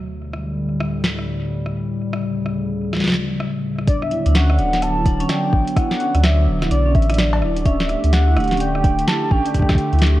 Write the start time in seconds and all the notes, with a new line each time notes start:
Already playing: D2
0.10 A2 D3 G3
0.33 cross-stick
0.81 cross-stick
1.04 snare
1.19 cross-stick
1.66 cross-stick
1.99 C#3
2.13 cross-stick
2.46 cross-stick
2.93 cross-stick, snare
2.97 snare
3.00 snare
3.04 snare
3.08 snare
3.10 snare
3.12 snare
3.14 snare
3.40 cross-stick
3.79 cross-stick
3.88 D3 F#3 B3 D4 D5, kick, closed hi-hat
4.02 E5, cross-stick
4.11 E4, closed hi-hat
4.26 D2 D4, closed hi-hat
4.35 C#4 F#5, snare, closed hi-hat
4.49 D5, cross-stick
4.58 D1 D4, closed hi-hat
4.73 D4, snare, closed hi-hat
4.82 A5, cross-stick, closed hi-hat
4.97 E4
5.06 D4, kick, closed hi-hat
5.20 C#4, closed hi-hat
5.29 D5 G5, cross-stick, snare, closed hi-hat
5.44 D4
5.53 A1 D4, kick
5.68 closed hi-hat
5.77 E4 F#5, kick, cross-stick, closed hi-hat
5.91 D4, snare
6.00 C#4, closed hi-hat
6.15 D2 D5, cross-stick, closed hi-hat
6.24 D4 E5, snare, closed hi-hat
6.38 D4
6.47 D1
6.62 E4, cross-stick, snare, closed hi-hat
6.71 B1 D4 D5, closed hi-hat
6.86 C#4
6.95 A1 D5 E5, kick, closed hi-hat
7.02 closed hi-hat
7.09 D4, cross-stick, closed hi-hat
7.14 closed hi-hat
7.18 D4 D5, snare, closed hi-hat
7.33 cowbell
7.42 D1 E4, cross-stick
7.57 D4, closed hi-hat
7.66 D3 A3 C#4 G4 E5, kick, closed hi-hat
7.80 D5, snare
7.89 D4, cross-stick, closed hi-hat
8.04 D2 D4, closed hi-hat
8.13 F#5, snare, closed hi-hat
8.27 E4
8.36 D1 D4, cross-stick, closed hi-hat
8.40 closed hi-hat
8.44 closed hi-hat
8.47 snare, closed hi-hat
8.51 C#4, closed hi-hat
8.57 D5, closed hi-hat
8.60 G5, closed hi-hat
8.75 D4, cross-stick
8.84 D4, kick, closed hi-hat
8.98 closed hi-hat
9.07 E4 A5, snare, closed hi-hat
9.22 D4
9.31 A1 C#4 G5, kick
9.46 D5, closed hi-hat
9.54 D4, kick, closed hi-hat
9.59 kick
9.62 kick
9.69 D4, kick, cross-stick, snare
9.75 kick, closed hi-hat
9.93 D2 E4, closed hi-hat
9.99 D4, cross-stick, snare, closed hi-hat
10.02 closed hi-hat
10.07 closed hi-hat
10.16 C#4